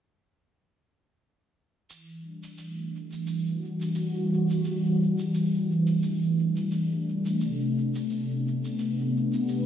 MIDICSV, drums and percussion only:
0, 0, Header, 1, 2, 480
1, 0, Start_track
1, 0, Key_signature, 1, "minor"
1, 0, Tempo, 689655
1, 1317, Time_signature, 4, 2, 24, 8
1, 6723, End_track
2, 0, Start_track
2, 0, Title_t, "Drums"
2, 1322, Note_on_c, 9, 69, 53
2, 1391, Note_off_c, 9, 69, 0
2, 1695, Note_on_c, 9, 69, 56
2, 1764, Note_off_c, 9, 69, 0
2, 1795, Note_on_c, 9, 69, 49
2, 1864, Note_off_c, 9, 69, 0
2, 2175, Note_on_c, 9, 69, 53
2, 2245, Note_off_c, 9, 69, 0
2, 2275, Note_on_c, 9, 69, 48
2, 2345, Note_off_c, 9, 69, 0
2, 2654, Note_on_c, 9, 69, 55
2, 2724, Note_off_c, 9, 69, 0
2, 2749, Note_on_c, 9, 69, 52
2, 2819, Note_off_c, 9, 69, 0
2, 3133, Note_on_c, 9, 69, 57
2, 3203, Note_off_c, 9, 69, 0
2, 3235, Note_on_c, 9, 69, 55
2, 3304, Note_off_c, 9, 69, 0
2, 3611, Note_on_c, 9, 69, 53
2, 3681, Note_off_c, 9, 69, 0
2, 3719, Note_on_c, 9, 69, 47
2, 3789, Note_off_c, 9, 69, 0
2, 4085, Note_on_c, 9, 69, 55
2, 4154, Note_off_c, 9, 69, 0
2, 4195, Note_on_c, 9, 69, 48
2, 4265, Note_off_c, 9, 69, 0
2, 4571, Note_on_c, 9, 69, 57
2, 4641, Note_off_c, 9, 69, 0
2, 4674, Note_on_c, 9, 69, 47
2, 4743, Note_off_c, 9, 69, 0
2, 5051, Note_on_c, 9, 69, 57
2, 5120, Note_off_c, 9, 69, 0
2, 5155, Note_on_c, 9, 69, 52
2, 5225, Note_off_c, 9, 69, 0
2, 5536, Note_on_c, 9, 69, 61
2, 5605, Note_off_c, 9, 69, 0
2, 5638, Note_on_c, 9, 69, 47
2, 5708, Note_off_c, 9, 69, 0
2, 6018, Note_on_c, 9, 69, 54
2, 6088, Note_off_c, 9, 69, 0
2, 6117, Note_on_c, 9, 69, 52
2, 6186, Note_off_c, 9, 69, 0
2, 6497, Note_on_c, 9, 69, 61
2, 6567, Note_off_c, 9, 69, 0
2, 6602, Note_on_c, 9, 69, 51
2, 6672, Note_off_c, 9, 69, 0
2, 6723, End_track
0, 0, End_of_file